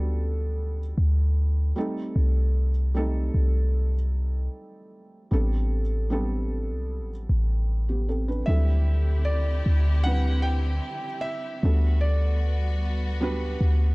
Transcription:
Already playing: D2 G3 B3 D4 F#4 A4
0.98 D2
1.76 G3 A3 C4 D#4 A4
2.16 C2
2.94 G3 A3 C4 D#4 A4
3.34 C2
5.31 A1 G3 B3 C4 D4 A4
6.10 G3 B3 C4 D4 A4
6.70 C2
7.00 A1
7.29 A1
7.89 B3 G4
8.09 C4 A4
8.28 D4 B4
8.46 D2 D3 F#3 C4 D4 E4 G4 A4 E5
8.53 G3
9.25 D5
9.66 D2
10.04 G3 C4 D4 E4 B4 F#5
10.42 G5
11.21 E5
11.62 D2 G3 B3 D4 F#4 A4
12.01 D5
13.21 G3 B3 D4 F#4 B4
13.61 D2

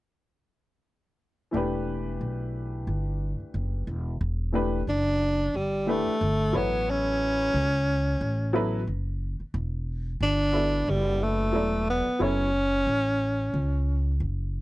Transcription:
1.51 E1 E3 A3 D4
1.55 G4 B4
2.21 B1
2.87 G1
3.40 muted upright bass stroke
3.54 F#1
3.87 E1
4.21 E1
4.52 E3 A3 D4 G4 B4
4.87 F#1 D4
5.54 G1 G3
5.86 E3 A3 D4 G4 B4
6.07 muted upright bass stroke
6.21 G1
6.53 A1 F#3 B3 E4 A4 C#5
6.57 B3
6.90 C#4
7.54 C#2
8.21 A1
8.53 F#3 B3 E4 A4 B4
8.87 F#1
9.40 muted upright bass stroke
9.54 E1
10.21 G1 D4
10.52 B3 E4 F#4 A4 D5
10.87 F#1 G3
11.23 A3
11.52 E1 F#3 B3 E4 A4 D5
11.90 B3
12.06 muted upright bass stroke
12.19 F#1 F#3 B3 C#4 E4 A4 C#5
12.87 A1
13.54 C#2
14.20 F#1

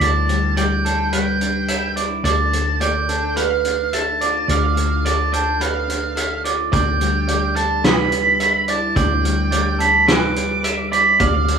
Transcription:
Already playing: G3 D4 E4 B4
0.00 D2 D3 D5 A5, closed hi-hat
0.29 G3, closed hi-hat
0.57 G3 D5 G5, closed hi-hat
0.85 D4 A4, closed hi-hat
1.12 G3 B4 G5, closed hi-hat
1.41 D4, closed hi-hat
1.68 B4 E5, closed hi-hat
1.96 E4 D5, closed hi-hat
2.24 D2 D3 D5 A5, closed hi-hat
2.53 A3, closed hi-hat
2.81 A3 D5 G5, closed hi-hat
3.09 D4 A4, closed hi-hat
3.37 A3 B4 F5, closed hi-hat
3.65 D4, closed hi-hat
3.93 A4 E5 A5, closed hi-hat
4.21 F4 D5, closed hi-hat
4.48 D2 D3 D5 F5, closed hi-hat
4.76 A3, closed hi-hat
5.05 A3 D5 A5, closed hi-hat
5.31 D4 A4 G5, closed hi-hat
5.60 A3 B4 F5, closed hi-hat
5.88 D4, closed hi-hat
6.16 A4 E5, closed hi-hat
6.44 F4 D5, closed hi-hat
6.72 D2 D3 D5 G5, kick, closed hi-hat
7.00 G3, closed hi-hat
7.28 G3 D5, closed hi-hat
7.56 D4 A4 A5, closed hi-hat
7.84 G3 B4 B5, snare, closed hi-hat
8.11 D4, closed hi-hat
8.39 B4 E5, closed hi-hat
8.68 E4 D5 A5, closed hi-hat
8.96 D2 D3 D5 G5, kick, closed hi-hat
9.23 G3, closed hi-hat
9.51 G3 D5, closed hi-hat
9.79 D4 A4 B5, closed hi-hat
10.07 G3 B4 D6, snare, closed hi-hat
10.36 D4, closed hi-hat
10.63 B4 E5, closed hi-hat
10.91 E4 D5 B5, closed hi-hat
11.19 D2 D3 D5 F5, kick, closed hi-hat
11.48 A3, closed hi-hat

